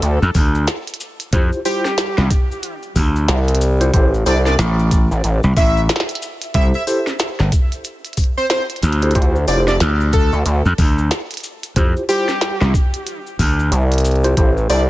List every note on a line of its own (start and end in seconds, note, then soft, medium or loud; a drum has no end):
0.02 0.19 D2 medium
0.02 closed hi-hat medium
0.02 cabasa medium
0.22 0.33 F2 loud
0.22 cabasa soft
0.35 0.66 D2 loud
0.35 kick loud
0.35 open hi-hat medium
0.35 cabasa medium
0.55 cabasa soft
0.67 snare loud
0.67 closed hi-hat medium
0.67 cabasa medium
0.87 closed hi-hat medium
0.87 cabasa soft
0.94 closed hi-hat medium
1.00 cabasa loud
1.20 closed hi-hat medium
1.20 cabasa soft
1.33 1.49 F2 loud
1.33 1.59 E4 medium
1.33 1.59 F4 medium
1.33 1.59 G4 medium
1.33 1.59 C5 medium
1.33 kick loud
1.33 closed hi-hat medium
1.33 cabasa medium
1.53 cabasa soft
1.65 1.84 E4 medium
1.65 1.84 F4 medium
1.65 1.84 G4 medium
1.65 2.31 G4 loud
1.65 1.84 C5 loud
1.65 open hi-hat medium
1.65 cabasa loud
1.85 snare soft
1.85 cabasa soft
1.98 snare loud
1.98 closed hi-hat medium
1.98 cabasa soft
2.18 2.28 C2 loud
2.18 snare soft
2.18 cabasa soft
2.30 kick loud
2.30 closed hi-hat medium
2.30 cabasa loud
2.52 cabasa soft
2.63 closed hi-hat medium
2.63 cabasa medium
2.83 cabasa soft
2.96 3.26 D2 loud
2.96 kick medium
2.96 open hi-hat medium
2.96 cabasa loud
3.16 cabasa soft
3.28 3.92 C2 loud
3.28 snare loud
3.28 closed hi-hat medium
3.28 cabasa medium
3.48 closed hi-hat medium
3.48 cabasa soft
3.55 closed hi-hat medium
3.61 cabasa medium
3.81 3.91 E4 medium
3.81 3.91 F4 medium
3.81 3.91 G4 medium
3.81 3.91 C5 loud
3.81 closed hi-hat medium
3.81 cabasa soft
3.94 4.24 A1 medium
3.94 4.12 E4 medium
3.94 4.12 G4 medium
3.94 4.12 A4 medium
3.94 4.12 C5 loud
3.94 kick loud
3.94 closed hi-hat medium
3.94 cabasa medium
4.14 cabasa soft
4.26 4.57 C2 loud
4.26 4.45 E4 medium
4.26 4.45 G4 medium
4.26 4.45 A4 medium
4.26 4.45 C5 medium
4.26 4.39 D5 medium
4.26 open hi-hat medium
4.26 cabasa medium
4.46 4.54 D5 medium
4.46 snare soft
4.46 cabasa soft
4.59 5.08 A1 loud
4.59 snare loud
4.59 closed hi-hat medium
4.59 cabasa medium
4.79 cabasa soft
4.91 kick loud
4.91 closed hi-hat medium
4.91 cabasa medium
5.11 5.22 A1 loud
5.11 cabasa soft
5.24 5.41 A1 medium
5.24 closed hi-hat medium
5.24 cabasa medium
5.43 5.55 C2 medium
5.43 cabasa soft
5.57 5.87 A1 loud
5.57 5.81 E5 medium
5.57 kick loud
5.57 open hi-hat medium
5.57 cabasa medium
5.77 cabasa soft
5.89 snare loud
5.89 closed hi-hat medium
5.89 cabasa medium
5.96 snare loud
6.00 snare medium
6.09 closed hi-hat medium
6.09 cabasa soft
6.15 closed hi-hat medium
6.22 cabasa loud
6.42 closed hi-hat medium
6.42 cabasa soft
6.54 6.71 C2 loud
6.54 6.81 E4 medium
6.54 6.81 G4 medium
6.54 6.81 A4 medium
6.54 6.81 C5 medium
6.54 6.67 E5 loud
6.54 kick loud
6.54 closed hi-hat medium
6.54 cabasa medium
6.74 6.83 E5 medium
6.74 cabasa soft
6.87 7.06 E4 medium
6.87 7.06 G4 medium
6.87 7.06 A4 medium
6.87 7.06 C5 medium
6.87 open hi-hat medium
6.87 cabasa medium
7.07 snare soft
7.07 cabasa soft
7.19 snare loud
7.19 closed hi-hat medium
7.19 cabasa medium
7.40 7.50 G1 loud
7.40 snare soft
7.40 cabasa soft
7.52 kick loud
7.52 closed hi-hat medium
7.52 cabasa loud
7.72 closed hi-hat soft
7.72 cabasa soft
7.84 closed hi-hat medium
7.84 cabasa medium
8.05 closed hi-hat soft
8.05 cabasa soft
8.13 closed hi-hat soft
8.17 kick medium
8.17 open hi-hat medium
8.17 cabasa loud
8.24 closed hi-hat soft
8.37 8.46 C5 medium
8.37 cabasa soft
8.50 8.63 C5 medium
8.50 snare loud
8.50 closed hi-hat medium
8.50 cabasa medium
8.70 closed hi-hat soft
8.70 cabasa soft
8.76 closed hi-hat soft
8.83 9.13 D2 loud
8.83 closed hi-hat soft
8.83 cabasa loud
8.93 closed hi-hat soft
9.02 9.12 E4 medium
9.02 9.12 G4 medium
9.02 9.12 A4 medium
9.02 9.12 C5 medium
9.02 closed hi-hat medium
9.02 cabasa soft
9.11 closed hi-hat soft
9.11 cabasa medium
9.15 9.46 D2 medium
9.15 9.34 E4 medium
9.15 9.34 F4 medium
9.15 9.34 G4 medium
9.15 9.34 C5 loud
9.15 kick loud
9.15 closed hi-hat medium
9.22 closed hi-hat soft
9.36 cabasa soft
9.48 9.78 F1 medium
9.48 9.66 E4 medium
9.48 9.66 F4 medium
9.48 9.66 G4 medium
9.48 9.66 C5 medium
9.48 9.61 D5 medium
9.48 open hi-hat medium
9.48 cabasa loud
9.68 9.76 D5 medium
9.68 snare soft
9.68 cabasa soft
9.80 10.30 D2 loud
9.80 snare loud
9.80 closed hi-hat medium
9.80 cabasa soft
10.01 cabasa soft
10.13 10.37 A4 loud
10.13 kick loud
10.13 closed hi-hat medium
10.13 cabasa medium
10.32 10.44 D2 loud
10.32 cabasa soft
10.46 10.62 D2 loud
10.46 closed hi-hat medium
10.46 cabasa medium
10.65 10.76 F2 medium
10.65 cabasa soft
10.78 11.09 D2 loud
10.78 kick loud
10.78 open hi-hat medium
10.78 cabasa medium
10.98 cabasa soft
11.11 snare loud
11.11 closed hi-hat medium
11.11 cabasa medium
11.31 closed hi-hat soft
11.31 cabasa soft
11.34 closed hi-hat soft
11.37 closed hi-hat medium
11.40 closed hi-hat soft
11.40 cabasa medium
11.63 closed hi-hat medium
11.63 cabasa soft
11.76 11.93 F2 loud
11.76 12.02 E4 medium
11.76 12.02 F4 medium
11.76 12.02 G4 medium
11.76 12.02 C5 medium
11.76 kick loud
11.76 closed hi-hat medium
11.76 cabasa medium
11.97 cabasa soft
12.09 12.27 E4 medium
12.09 12.27 F4 medium
12.09 12.74 G4 medium
12.09 12.27 G4 medium
12.09 12.27 C5 medium
12.09 open hi-hat medium
12.09 cabasa medium
12.29 snare soft
12.29 cabasa soft
12.41 snare loud
12.41 closed hi-hat medium
12.41 cabasa soft
12.61 12.72 C2 loud
12.61 snare soft
12.61 cabasa soft
12.74 kick loud
12.74 cabasa medium
12.94 closed hi-hat medium
12.94 cabasa soft
13.07 closed hi-hat medium
13.07 cabasa medium
13.27 cabasa soft
13.39 13.70 D2 loud
13.39 kick medium
13.39 open hi-hat medium
13.39 cabasa medium
13.59 cabasa soft
13.72 14.35 C2 loud
13.72 closed hi-hat medium
13.72 cabasa medium
13.92 closed hi-hat soft
13.92 cabasa soft
13.94 closed hi-hat soft
13.98 closed hi-hat medium
14.00 closed hi-hat soft
14.05 closed hi-hat soft
14.05 cabasa medium
14.11 closed hi-hat soft
14.16 closed hi-hat soft
14.24 14.34 E4 medium
14.24 14.34 F4 medium
14.24 14.34 G4 medium
14.24 14.34 C5 loud
14.24 closed hi-hat medium
14.24 cabasa soft
14.37 14.68 A1 loud
14.37 14.56 E4 medium
14.37 14.56 G4 medium
14.37 14.56 A4 medium
14.37 14.56 C5 loud
14.37 kick loud
14.37 closed hi-hat medium
14.37 cabasa soft
14.57 cabasa soft
14.69 14.90 C2 medium
14.69 14.88 E4 medium
14.69 14.88 G4 medium
14.69 14.88 A4 medium
14.69 14.88 C5 medium
14.69 14.82 D5 medium
14.69 open hi-hat medium
14.69 cabasa medium